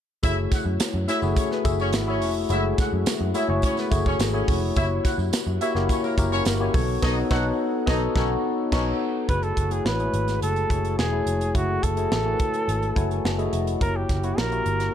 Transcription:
0.23 F#1 A3 E4 F#4 G#4 C#5 E5, kick, closed hi-hat, tambourine
0.52 F#4 F#5, kick, snare, closed hi-hat, tambourine
0.65 F#2
0.80 muted picked electric bass stroke, snare, closed hi-hat, tambourine
0.94 F#2
1.08 A3 E4 F#4 G#4 C#5 E5, snare, closed hi-hat, tambourine
1.22 F#1 A3 E4 F#4 G#4 E5, tambourine
1.36 C#4 C#5, kick, closed hi-hat, tambourine
1.51 B3 B4, snare
1.64 F#1 A3 E4 F#4 G#4 E5, kick, closed hi-hat, tambourine
1.80 C#4 C#5, tambourine
1.93 G#1, snare, closed hi-hat, tambourine
2.07 A3 C#4 E4 F#4 G#4 C#5 E5
2.22 F1, open hi-hat, tambourine
2.49 F#1 G#3 E4 F#4 G#4 C#5 E5, closed hi-hat, tambourine
2.56 A3
2.78 F#4 F#5, kick, snare, closed hi-hat, tambourine
2.93 F#2
3.06 muted picked electric bass stroke, snare, closed hi-hat, tambourine
3.21 F#2
3.34 A3 E4 F#4 G#4 C#5 E5, closed hi-hat, tambourine
3.48 F#1 A3 E4 F#4 G#4 C#5
3.62 C#4 C#5, kick, closed hi-hat, tambourine
3.77 B3 B4, snare, tambourine
3.91 F#1 A3 E4 F#4 G#4 C#5, kick, closed hi-hat, tambourine
4.06 C#4 C#5, kick, tambourine
4.19 G#1, snare, closed hi-hat, tambourine
4.33 A3 C#4 E4 F#4 G#4 C#5
4.48 F1, kick, open hi-hat, tambourine
4.76 F#1 A#3 E4 F#4 G4 C#5 E5, kick, closed hi-hat, tambourine
5.04 F#4 F#5, kick, snare, closed hi-hat, tambourine
5.18 F#2, tambourine
5.32 muted picked electric bass stroke, snare, closed hi-hat, tambourine
5.47 F#2
5.61 A#3 E4 F#4 G4 C#5 E5, closed hi-hat, tambourine
5.75 F#1 A#3 E4 F#4 G4 A#4, snare
5.89 C#4 C#5, kick, closed hi-hat, tambourine
6.03 A#3 A#4, tambourine
6.18 F#1 A#3 E4 F#4 G4 A#4, kick, closed hi-hat, tambourine
6.32 C#4 C#5, tambourine
6.45 G1, snare, closed hi-hat, tambourine
6.60 A#3 C#4 E4 F#4 G4 C#5
6.74 B1 B3 D#4 F#4 A4 C#5, kick, open hi-hat, tambourine
7.02 B1 B3 D#4 F#4 A4 C#5 D#5, kick, snare, crash
7.30 B1 B3 D#4 F#4 A4 C#5 F#5, kick, snare
7.86 B1 B3 D#4 F#4 A4 C#5 D#5, kick, snare
8.15 B1 B3 C#4 D#4 F#4 A4 B4 C#5, kick, snare
8.71 B1 B3 C#4 D#4 F#4 A4 C#5, kick, snare, crash
9.28 F#1 A3 E4 F#4 G#4 B4 C#5, kick, closed hi-hat
9.43 A4, closed hi-hat
9.57 F#1, kick, closed hi-hat
9.71 A3 E4 F#4 G#4 C#5, closed hi-hat
9.85 A1 B4, snare
9.99 G#3 E4 F#4 G#4 C#5, closed hi-hat
10.05 A3
10.14 G#1, closed hi-hat
10.28 snare, closed hi-hat
10.42 F#1 A4, closed hi-hat
10.56 closed hi-hat
10.70 F#1 A3 E4 F#4 G#4 C#5, kick, closed hi-hat
10.85 closed hi-hat
10.98 E1 G#4, snare
11.12 A3 E4 F#4 G#4 C#5
11.26 F1, closed hi-hat
11.41 closed hi-hat
11.54 F#1 A3 E4 F#4 G#4 E5, kick, closed hi-hat
11.83 F#1 A4, kick, closed hi-hat
11.97 A3 E4 F#4 G#4 C#5, closed hi-hat
12.11 A1, snare
12.25 A3 E4 F#4 A#4 G#5
12.33 B4
12.39 kick, closed hi-hat
12.54 closed hi-hat
12.68 G#1, closed hi-hat
12.83 closed hi-hat
12.96 F#1 A3 E4 F#4 C#5 G#5 A5, kick, closed hi-hat
13.11 closed hi-hat
13.24 F#1 F#5, snare
13.38 A3 E4 F#4 G#4 D#5, closed hi-hat
13.53 F1 E5, closed hi-hat
13.67 closed hi-hat
13.80 F#1 A#3 E4 F#4 G4 A#4 C#5, kick, closed hi-hat
13.96 G4
14.09 F#1, kick, snare, closed hi-hat
14.23 A#3 E4 F#4 G4 C#5, closed hi-hat
14.38 A#1 A#4, snare
14.51 A#3 E4 F#4 G4 A#4, closed hi-hat
14.66 G1, closed hi-hat
14.80 snare, closed hi-hat

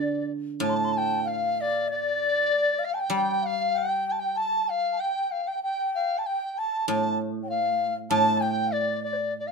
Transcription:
Already playing: D3 D5
0.60 A2 A5
0.70 C6
0.76 A5
0.85 C6
0.93 A5
0.97 G5
1.24 F5
1.61 D5
1.88 D5
2.79 F5
2.84 F5
2.94 G5 A5
3.00 G5
3.08 G3 G5
3.16 G5
3.35 G5
3.42 F5
3.46 F5
3.73 G5
3.78 G5
4.08 G5 A5
4.20 G5
4.35 A5
4.69 F5
4.92 A5
4.97 G5
5.32 F5
5.45 G5
5.63 G5
5.95 F5
6.18 A5
6.26 G5
6.57 A5
6.88 A2 A5
7.43 G5
7.48 F5
8.10 A2 A5
8.37 G5 A5
8.42 G5
8.67 F5
8.72 D5
9.03 D5
9.13 C5 D5
9.40 D5
9.47 F5

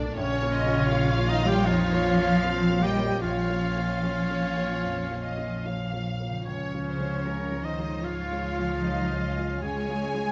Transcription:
Already playing: B1 A2 A3 D4 A4 D5
0.00 A#2
0.04 A#3
0.09 C#4
0.13 A#1 C#3 C#4 F4 C#5
0.42 A#3 F4 C#5
0.52 F4 D#5
0.67 A#3 F4 C#5
0.89 A#3 F4 C#5 F5
1.17 A#3 F4 C#5
1.26 D#3 D#4 D#5
1.41 A#3 F4 G4 C#5
1.46 G3 G4 G5
1.60 F4
1.65 F2 F3 D#4 F4 C#5 F5
1.92 A#3 F4 C#5
2.04 C#4
2.18 A#3 F4 C#5
2.42 A#3 C4 F4 C#5 F5
2.69 A#3 F4 C#5
2.79 G3 A#3 G4 G5
2.83 D#5 G5
2.97 A#3 F4 C#5
3.19 A#1 F3 C#4 F4 C#5 F5
3.24 A#1
3.49 A#3 F4 C#5
3.75 A#3 F4 C#5
4.03 A#3 F4 C#5
4.30 A#3 F4 C#5
4.56 A#3 F4 C#5
4.83 F2
5.11 A#3 F4 C#5
5.24 D#5
5.37 A#3 F4 C#5
5.66 A#3 F4 C#5 F5
5.93 A#3 F4 C#5
6.20 A#3 F4 C#5
6.28 C#3
6.32 F3
6.37 C#4
6.41 C#3 F4
6.45 C#2 C#4 C#5
6.74 G#3 F4 C#5
6.88 C5
7.00 G#3 F4 C#5
7.26 G#3 F4 A#4 C#5
7.52 G#3 F4 C#5
7.62 D#3 D#4 C5 D#5
7.79 G#3 F4 C#5
8.03 G#2 F3 F4 C#5 F5
8.32 G#3 F4 C#5
8.59 G#3 F4 C#5
8.83 G#3 D#4 F4 C#5 D#5
9.12 G#3 F4 C#5
9.22 C#4
9.37 G#3 F4 C#5
9.60 C#2 G#3 G#4 C#5 G#5
9.89 G#3 F4 C#5
10.14 G#3 F4 C#5

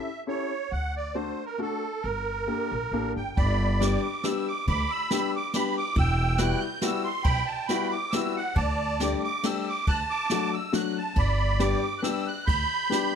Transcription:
Already playing: E5
0.27 C#4 E4 G4 A4 C#5
0.72 D2 F#5
0.96 D5
1.14 A3 D4 F#4 A4 C5
1.46 A#4
1.58 A3 D4 F#4 A4
2.03 G1 A#4
2.47 A#3 D4 G4 A4
2.72 A#1
2.91 A1 A#3 D4 G4 A4
3.16 G1 G5
3.37 G1 D5 B5, kick, ride
3.79 G3 B3 D4 G4 D6, snare, ride
4.24 G3 B3 D4 G4 E6, snare, ride
4.48 D6
4.67 D2 B5 D6, kick, ride
4.90 E6
5.10 G3 B3 D4 G4 E6, snare, ride
5.36 D6
5.53 G3 B3 D4 G4 B5, snare, ride
5.78 D6
5.96 E1 G5 E6, kick, ride
6.38 G3 B3 E4 F#4 F#6, snare, ride
6.60 G6
6.81 G3 B3 E4 F#4 E6, snare, ride
7.04 C6
7.24 B1 G5 B5, kick, ride
7.46 A5
7.67 G3 B3 E4 F#4 B5, snare, ride
7.91 D6
8.11 G3 B3 E4 F#4 E6, snare, ride
8.36 F#5
8.56 D2 D5 A5, kick, ride
8.99 G3 A3 D4 G4 D6, snare, ride
9.24 D6
9.43 G3 A3 D4 G4 E6, snare, ride
9.69 D6
9.87 D2 A5 F#6, kick, ride
10.10 D6
10.30 F#3 A3 D4 F#4, snare, ride
10.54 E6
10.73 F#3 A3 D4 F#4 F#6, snare, ride
10.98 A5
11.16 G1 D5 B5, kick, ride
11.59 G3 B3 D4 G4 D6, snare, ride
11.98 B3 F#6
12.02 G3 D4 G4 E6, snare, ride
12.27 F#6
12.46 D2 B5 G6, kick, ride
12.90 G3 B3 D4 G4, snare, ride

